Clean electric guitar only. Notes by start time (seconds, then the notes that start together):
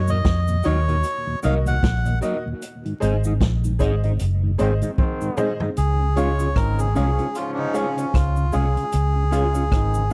0.10 D#4 F#4 A#4 D#5
0.65 D#4 F#4 A#4 D#5
0.88 D#4 F#4 A#4 D#5
1.44 D#4 F#4 A#4 D#5
1.68 D#4 F#4 A#4 D#5
2.23 D#4 F#4 A#4 D#5
3.02 D#4 G#4 C5 D#5
3.25 D#4 G#4 C5 D#5
3.80 D#4 G#4 C5 D#5
4.04 D#4 G#4 C5 D#5
4.59 D#4 G#4 C5 D#5
4.83 D#4 G#4 C5 D#5
5.38 D#4 G#4 C5 D#5
5.62 D#4 G#4 C5 D#5
6.18 C#4 F4 G#4 C#5
6.39 C#4 F4 G#4 C#5
6.96 C#4 F4 G#4 C#5
7.18 C#4 F4 G#4 C#5
7.75 C#4 F4 G#4 C#5
7.98 C#4 F4 G#4 C#5
8.53 C#4 F4 G#4 C#5
9.32 C#4 F4 G#4 C#5
9.55 C#4 F4 G#4 C#5